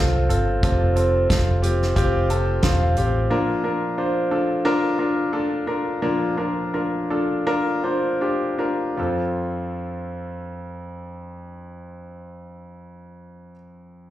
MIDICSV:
0, 0, Header, 1, 4, 480
1, 0, Start_track
1, 0, Key_signature, -1, "major"
1, 0, Tempo, 668896
1, 449, Time_signature, 4, 2, 24, 8
1, 3330, Tempo, 696864
1, 4770, Tempo, 750000
1, 6210, Tempo, 786370
1, 9335, End_track
2, 0, Start_track
2, 0, Title_t, "Grand piano"
2, 0, Program_c, 0, 0
2, 0, Control_c, 0, 64, 127
2, 0, Note_on_c, 0, 60, 71
2, 0, Note_on_c, 0, 65, 64
2, 0, Note_on_c, 0, 69, 80
2, 0, Note_on_c, 0, 72, 109
2, 187, Note_off_c, 0, 60, 0
2, 188, Note_off_c, 0, 69, 0
2, 189, Note_off_c, 0, 65, 0
2, 208, Note_on_c, 0, 65, 61
2, 210, Note_on_c, 0, 60, 65
2, 211, Note_on_c, 0, 69, 74
2, 427, Note_off_c, 0, 65, 0
2, 428, Note_off_c, 0, 60, 0
2, 428, Note_off_c, 0, 69, 0
2, 451, Note_on_c, 0, 65, 78
2, 454, Note_on_c, 0, 48, 48
2, 454, Note_on_c, 0, 60, 80
2, 455, Note_on_c, 0, 69, 79
2, 668, Note_off_c, 0, 65, 0
2, 669, Note_off_c, 0, 60, 0
2, 670, Note_off_c, 0, 69, 0
2, 686, Note_on_c, 0, 60, 69
2, 687, Note_on_c, 0, 65, 60
2, 688, Note_on_c, 0, 69, 69
2, 905, Note_off_c, 0, 60, 0
2, 905, Note_off_c, 0, 65, 0
2, 906, Note_off_c, 0, 69, 0
2, 927, Note_on_c, 0, 60, 67
2, 928, Note_on_c, 0, 65, 64
2, 928, Note_on_c, 0, 69, 69
2, 1141, Note_off_c, 0, 48, 0
2, 1145, Note_off_c, 0, 60, 0
2, 1146, Note_off_c, 0, 65, 0
2, 1146, Note_off_c, 0, 69, 0
2, 1165, Note_on_c, 0, 60, 64
2, 1165, Note_on_c, 0, 65, 60
2, 1165, Note_on_c, 0, 67, 70
2, 1384, Note_off_c, 0, 60, 0
2, 1384, Note_off_c, 0, 65, 0
2, 1384, Note_off_c, 0, 67, 0
2, 1406, Note_on_c, 0, 60, 101
2, 1407, Note_on_c, 0, 65, 91
2, 1408, Note_on_c, 0, 67, 108
2, 1624, Note_off_c, 0, 60, 0
2, 1625, Note_off_c, 0, 65, 0
2, 1625, Note_off_c, 0, 67, 0
2, 1652, Note_on_c, 0, 81, 59
2, 1653, Note_on_c, 0, 60, 69
2, 1654, Note_on_c, 0, 65, 62
2, 1655, Note_on_c, 0, 69, 80
2, 1867, Note_off_c, 0, 60, 0
2, 1868, Note_off_c, 0, 65, 0
2, 1868, Note_off_c, 0, 69, 0
2, 1872, Note_off_c, 0, 81, 0
2, 1890, Note_off_c, 0, 72, 0
2, 1890, Note_on_c, 0, 65, 69
2, 1890, Note_on_c, 0, 72, 69
2, 1890, Note_on_c, 0, 77, 62
2, 1891, Note_on_c, 0, 60, 71
2, 2013, Note_off_c, 0, 77, 0
2, 2027, Note_on_c, 0, 77, 54
2, 2105, Note_off_c, 0, 65, 0
2, 2106, Note_off_c, 0, 60, 0
2, 2106, Note_off_c, 0, 72, 0
2, 2133, Note_on_c, 0, 60, 68
2, 2134, Note_on_c, 0, 65, 55
2, 2136, Note_on_c, 0, 67, 69
2, 2344, Note_off_c, 0, 77, 0
2, 2347, Note_off_c, 0, 60, 0
2, 2348, Note_off_c, 0, 65, 0
2, 2348, Note_off_c, 0, 67, 0
2, 2370, Note_on_c, 0, 46, 53
2, 2370, Note_on_c, 0, 65, 71
2, 2371, Note_on_c, 0, 53, 51
2, 2371, Note_on_c, 0, 62, 76
2, 2372, Control_c, 0, 64, 0
2, 2373, Note_on_c, 0, 70, 84
2, 2514, Control_c, 0, 64, 127
2, 2586, Note_off_c, 0, 62, 0
2, 2586, Note_off_c, 0, 65, 0
2, 2587, Note_off_c, 0, 70, 0
2, 2611, Note_on_c, 0, 62, 57
2, 2611, Note_on_c, 0, 65, 56
2, 2614, Note_on_c, 0, 70, 73
2, 2826, Note_off_c, 0, 62, 0
2, 2827, Note_off_c, 0, 65, 0
2, 2828, Note_off_c, 0, 70, 0
2, 2854, Note_on_c, 0, 65, 61
2, 2855, Note_on_c, 0, 62, 63
2, 2857, Note_on_c, 0, 72, 70
2, 3060, Note_off_c, 0, 46, 0
2, 3061, Note_off_c, 0, 53, 0
2, 3069, Note_off_c, 0, 65, 0
2, 3070, Note_off_c, 0, 62, 0
2, 3071, Note_off_c, 0, 72, 0
2, 3095, Note_on_c, 0, 62, 65
2, 3095, Note_on_c, 0, 65, 57
2, 3096, Note_on_c, 0, 69, 63
2, 3311, Note_off_c, 0, 62, 0
2, 3312, Note_off_c, 0, 65, 0
2, 3312, Note_off_c, 0, 69, 0
2, 3336, Note_on_c, 0, 62, 97
2, 3337, Note_on_c, 0, 65, 86
2, 3338, Note_on_c, 0, 70, 102
2, 3546, Note_off_c, 0, 62, 0
2, 3547, Note_off_c, 0, 65, 0
2, 3547, Note_off_c, 0, 70, 0
2, 3569, Note_on_c, 0, 62, 69
2, 3571, Note_on_c, 0, 65, 62
2, 3571, Note_on_c, 0, 70, 72
2, 3782, Note_off_c, 0, 62, 0
2, 3783, Note_off_c, 0, 65, 0
2, 3783, Note_off_c, 0, 70, 0
2, 3802, Note_on_c, 0, 65, 60
2, 3804, Note_on_c, 0, 69, 72
2, 3805, Note_on_c, 0, 62, 66
2, 4018, Note_off_c, 0, 65, 0
2, 4019, Note_off_c, 0, 69, 0
2, 4020, Note_off_c, 0, 62, 0
2, 4040, Note_on_c, 0, 62, 57
2, 4041, Note_on_c, 0, 70, 75
2, 4043, Note_on_c, 0, 65, 53
2, 4259, Note_off_c, 0, 62, 0
2, 4259, Note_off_c, 0, 70, 0
2, 4260, Note_off_c, 0, 65, 0
2, 4280, Note_on_c, 0, 46, 53
2, 4281, Note_on_c, 0, 53, 49
2, 4281, Note_on_c, 0, 62, 70
2, 4282, Note_on_c, 0, 65, 68
2, 4282, Note_on_c, 0, 70, 80
2, 4502, Note_off_c, 0, 62, 0
2, 4502, Note_off_c, 0, 65, 0
2, 4502, Note_off_c, 0, 70, 0
2, 4523, Note_on_c, 0, 62, 58
2, 4525, Note_on_c, 0, 65, 50
2, 4527, Note_on_c, 0, 70, 69
2, 4747, Note_off_c, 0, 62, 0
2, 4748, Note_off_c, 0, 65, 0
2, 4749, Note_off_c, 0, 70, 0
2, 4773, Note_on_c, 0, 65, 53
2, 4774, Note_on_c, 0, 62, 55
2, 4776, Note_on_c, 0, 70, 64
2, 4975, Note_off_c, 0, 46, 0
2, 4976, Note_off_c, 0, 53, 0
2, 4982, Note_off_c, 0, 62, 0
2, 4982, Note_off_c, 0, 65, 0
2, 4983, Note_off_c, 0, 70, 0
2, 5008, Note_on_c, 0, 62, 58
2, 5009, Note_on_c, 0, 65, 51
2, 5010, Note_on_c, 0, 69, 64
2, 5218, Note_off_c, 0, 62, 0
2, 5218, Note_off_c, 0, 65, 0
2, 5219, Note_off_c, 0, 69, 0
2, 5240, Note_on_c, 0, 62, 79
2, 5241, Note_on_c, 0, 70, 100
2, 5242, Note_on_c, 0, 65, 77
2, 5454, Note_off_c, 0, 62, 0
2, 5455, Note_off_c, 0, 65, 0
2, 5455, Note_off_c, 0, 70, 0
2, 5477, Note_on_c, 0, 72, 69
2, 5478, Note_on_c, 0, 62, 57
2, 5479, Note_on_c, 0, 65, 58
2, 5695, Note_off_c, 0, 62, 0
2, 5695, Note_off_c, 0, 72, 0
2, 5696, Note_off_c, 0, 65, 0
2, 5718, Note_on_c, 0, 62, 60
2, 5720, Note_on_c, 0, 67, 64
2, 5721, Note_on_c, 0, 65, 55
2, 5939, Note_off_c, 0, 62, 0
2, 5940, Note_off_c, 0, 67, 0
2, 5941, Note_off_c, 0, 65, 0
2, 5955, Note_on_c, 0, 62, 60
2, 5956, Note_on_c, 0, 65, 55
2, 5958, Note_on_c, 0, 70, 65
2, 6184, Note_off_c, 0, 62, 0
2, 6185, Note_off_c, 0, 65, 0
2, 6186, Note_off_c, 0, 70, 0
2, 6192, Note_on_c, 0, 60, 47
2, 6205, Note_on_c, 0, 41, 52
2, 6205, Note_on_c, 0, 65, 51
2, 6216, Control_c, 0, 64, 0
2, 6218, Note_on_c, 0, 69, 57
2, 6316, Control_c, 0, 64, 127
2, 8968, Note_off_c, 0, 60, 0
2, 8980, Note_off_c, 0, 41, 0
2, 8980, Note_off_c, 0, 65, 0
2, 8992, Note_off_c, 0, 69, 0
2, 9335, End_track
3, 0, Start_track
3, 0, Title_t, "Fingered electric bass"
3, 0, Program_c, 1, 33
3, 0, Note_on_c, 1, 36, 76
3, 194, Note_off_c, 1, 36, 0
3, 207, Note_on_c, 1, 31, 80
3, 431, Note_off_c, 1, 31, 0
3, 454, Note_on_c, 1, 29, 92
3, 901, Note_off_c, 1, 29, 0
3, 935, Note_on_c, 1, 29, 79
3, 1382, Note_off_c, 1, 29, 0
3, 1410, Note_on_c, 1, 29, 82
3, 1859, Note_off_c, 1, 29, 0
3, 1890, Note_on_c, 1, 28, 68
3, 2111, Note_off_c, 1, 28, 0
3, 2139, Note_on_c, 1, 33, 72
3, 2355, Note_off_c, 1, 33, 0
3, 9335, End_track
4, 0, Start_track
4, 0, Title_t, "Drums"
4, 215, Note_on_c, 9, 42, 50
4, 287, Note_off_c, 9, 42, 0
4, 453, Note_on_c, 9, 36, 104
4, 454, Note_on_c, 9, 42, 73
4, 525, Note_off_c, 9, 36, 0
4, 525, Note_off_c, 9, 42, 0
4, 692, Note_on_c, 9, 42, 54
4, 763, Note_off_c, 9, 42, 0
4, 934, Note_on_c, 9, 36, 99
4, 935, Note_on_c, 9, 42, 81
4, 936, Note_on_c, 9, 38, 87
4, 1005, Note_off_c, 9, 36, 0
4, 1007, Note_off_c, 9, 38, 0
4, 1007, Note_off_c, 9, 42, 0
4, 1172, Note_on_c, 9, 42, 72
4, 1244, Note_off_c, 9, 42, 0
4, 1308, Note_on_c, 9, 38, 27
4, 1380, Note_off_c, 9, 38, 0
4, 1409, Note_on_c, 9, 36, 87
4, 1411, Note_on_c, 9, 42, 73
4, 1481, Note_off_c, 9, 36, 0
4, 1482, Note_off_c, 9, 42, 0
4, 1649, Note_on_c, 9, 42, 56
4, 1721, Note_off_c, 9, 42, 0
4, 1885, Note_on_c, 9, 38, 86
4, 1885, Note_on_c, 9, 42, 81
4, 1889, Note_on_c, 9, 36, 91
4, 1956, Note_off_c, 9, 42, 0
4, 1957, Note_off_c, 9, 38, 0
4, 1961, Note_off_c, 9, 36, 0
4, 2128, Note_on_c, 9, 42, 51
4, 2200, Note_off_c, 9, 42, 0
4, 9335, End_track
0, 0, End_of_file